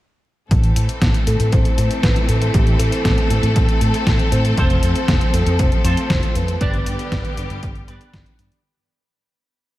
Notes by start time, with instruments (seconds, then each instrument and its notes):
0.51 fingered electric bass A1, string section E3 A3 C4 A4, kick, closed hi-hat
0.64 closed hi-hat
0.76 fingered electric bass A2, closed hi-hat
0.89 closed hi-hat
1.02 fingered electric bass A1, kick, snare, closed hi-hat
1.14 closed hi-hat
1.27 fingered electric bass A2, soft synth lead A4, closed hi-hat
1.40 fingered electric bass A2, closed hi-hat
1.52 fingered electric bass A1, soft synth lead C5, kick, closed hi-hat
1.65 closed hi-hat
1.78 fingered electric bass A2, closed hi-hat
1.91 closed hi-hat
2.03 fingered electric bass A1, soft synth lead B4, kick, snare, closed hi-hat
2.16 closed hi-hat
2.28 fingered electric bass A2, soft synth lead A4, closed hi-hat
2.42 closed hi-hat
2.54 fingered electric bass A1, soft synth lead G4, kick, closed hi-hat
2.67 closed hi-hat
2.79 fingered electric bass A2, soft synth lead A4, closed hi-hat
2.92 closed hi-hat
3.05 fingered electric bass A1, kick, snare, closed hi-hat
3.18 closed hi-hat
3.30 fingered electric bass A2, closed hi-hat
3.43 fingered electric bass A2, closed hi-hat
3.56 fingered electric bass A1, kick, closed hi-hat
3.69 closed hi-hat
3.81 fingered electric bass A2, closed hi-hat
3.94 closed hi-hat
4.07 fingered electric bass A1, kick, snare, closed hi-hat
4.19 closed hi-hat
4.32 fingered electric bass A2, soft synth lead C5, closed hi-hat
4.45 closed hi-hat
4.57 fingered electric bass F1, string section F3, clean electric guitar C4 F4 A4 C5, kick, closed hi-hat
4.70 closed hi-hat
4.83 fingered electric bass F2, closed hi-hat
4.96 closed hi-hat
5.08 fingered electric bass F1, kick, snare, closed hi-hat
5.21 closed hi-hat
5.34 fingered electric bass F2, soft synth lead A4, closed hi-hat
5.46 fingered electric bass F2, closed hi-hat
5.59 fingered electric bass F1, soft synth lead C5, kick, closed hi-hat
5.72 closed hi-hat
5.84 fingered electric bass F2, clean electric guitar C4 F4 A4 C5, closed hi-hat
5.97 closed hi-hat
6.10 fingered electric bass F1, kick, snare, closed hi-hat
6.23 closed hi-hat
6.35 fingered electric bass F2, soft synth lead B4, closed hi-hat
6.48 closed hi-hat
6.60 fingered electric bass G1, string section D3 G3 B3 G4, clean electric guitar B3 D4 G4 D5, kick, closed hi-hat
6.74 closed hi-hat
6.86 fingered electric bass G2, closed hi-hat
6.99 closed hi-hat
7.12 fingered electric bass G1, kick, snare, closed hi-hat
7.25 closed hi-hat
7.37 fingered electric bass G2, closed hi-hat
7.50 fingered electric bass G2, closed hi-hat
7.63 fingered electric bass G1, kick, closed hi-hat
7.75 closed hi-hat
7.88 fingered electric bass G2, clean electric guitar B3 D4 G4 B4, closed hi-hat
8.01 closed hi-hat
8.14 fingered electric bass G1, kick, snare, closed hi-hat
8.26 closed hi-hat
8.39 fingered electric bass G2, closed hi-hat
8.52 closed hi-hat